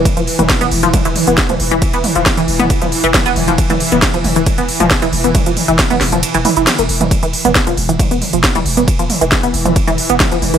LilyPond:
<<
  \new Staff \with { instrumentName = "Synth arpeggio sound" } { \clef bass \time 4/4 \tempo 4 = 136 r16 f16 r16 e16 r16 b16 r16 f16 r16 e16 r16 b16 r16 f16 r16 e16 | r16 b16 r16 f16 r16 e16 r16 b16 r16 f16 r16 e16 r16 b16 r16 f16 | r16 e16 r16 b16 r16 f16 r16 e16 r16 b16 r16 f16 r16 e16 r16 b16 | r16 f16 r16 e16 r16 b16 r16 f16 r16 e16 e16 e'16 r16 ais16 r16 e16 |
r16 e16 r16 b16 r16 f16 r16 e16 r16 b16 r16 f16 r16 e16 r16 b16 | r16 f16 r16 e16 r16 b16 r16 f16 r16 e16 r16 b16 r16 f16 r16 e16 | }
  \new Staff \with { instrumentName = "Synth drone" } { \clef bass \time 4/4 e1~ | e1~ | e1~ | e1 |
e1~ | e1 | }
  \new Staff \with { instrumentName = "808-style bass" } { \clef bass \time 4/4 r16 e,,16 r16 e,,16 r16 e,,16 e,,16 e,,16 r16 e,,16 r16 e,,16 r16 e,,16 e,,16 e,,16 | r16 e,,16 r16 e,,16 r16 e,,16 e,,16 e,,16 r16 e,,16 r16 e,,16 r16 e,,16 e,,16 e,,16 | r16 e,,16 r16 e,,16 r16 e,,16 e,,16 e,,16 r16 e,,16 r16 e,,16 r16 e,,16 e,,16 e,,16 | r16 e,,16 r16 e,,16 r16 e,,16 e,,16 e,,16 r16 e,,16 r16 e,,16 r16 e,,16 e,,16 e,,16 |
r16 e,,16 r16 e,,16 r16 e,,16 e,,16 e,,16 r16 e,,16 r16 e,,16 r16 e,,16 e,,16 e,,16 | r16 e,,16 r16 e,,16 r16 e,,16 e,,16 e,,16 r16 e,,16 r16 e,,16 r16 e,,16 e,,16 e,,16 | }
  \new DrumStaff \with { instrumentName = "Drums" } \drummode { \time 4/4 <hh bd cymr toml>16 hh16 hho16 <hh toml>16 <hh bd cymr sn>16 <hh toml>16 hho16 hh16 <hh bd cymr toml>16 hh16 <hho toml>16 hh16 <hh bd cymr sn>16 <hh toml>16 hho16 <hh toml>16 | <hh bd cymr>16 hh16 <hho toml>16 hh16 <hh bd cymr sn toml>16 hh16 hho16 <hh toml>16 <hh bd cymr>16 <hh toml>16 hho16 hh16 <hh bd cymr sn toml>16 hh16 <hho toml>16 hh16 | <hh bd cymr>16 <hh toml>16 hho16 <hh toml>16 <hh bd cymr sn>16 hh16 <hho toml>16 hh16 <hh bd cymr toml>16 hh16 hho16 <hh toml>16 <hh bd cymr sn>16 <hh toml>16 hho16 hh16 | <hh bd cymr toml>16 hh16 <hho toml>16 hh16 <hh bd cymr sn>16 <hh toml>16 <hho sn>16 <hh toml>16 <hh cymr>16 hh16 <hho toml>16 hh16 <hh cymr sn toml>16 hh16 hho16 <hh toml>16 |
<hh bd cymr toml>16 hh16 hho16 <hh toml>16 <hh bd cymr sn>16 <hh toml>16 hho16 hh16 <hh bd cymr toml>16 hh16 <hho toml>16 hh16 <hh bd cymr sn>16 <hh toml>16 hho16 <hh toml>16 | <hh bd cymr>16 hh16 <hho toml>16 hh16 <hh bd cymr sn toml>16 hh16 hho16 <hh toml>16 <hh bd cymr>16 <hh toml>16 hho16 hh16 <hh bd cymr sn toml>16 hh16 <hho toml>16 hh16 | }
>>